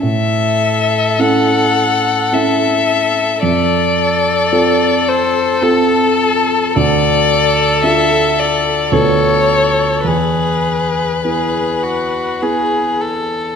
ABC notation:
X:1
M:3/4
L:1/8
Q:1/4=53
K:A
V:1 name="Violin"
e2 f2 e2 | d3 =c A2 | d2 e d c2 | B4- B z |]
V:2 name="Violin"
A6 | A6 | A4 A2 | G2 G F G A |]
V:3 name="Grand piano"
A,,2 [CEA]2 [CEA]2 | =F,,2 [=C=FA]2 [CFA]2 | D,,2 [D=FA]2 [D,,B,FA]2 | E,,2 [B,EG]2 [B,EG]2 |]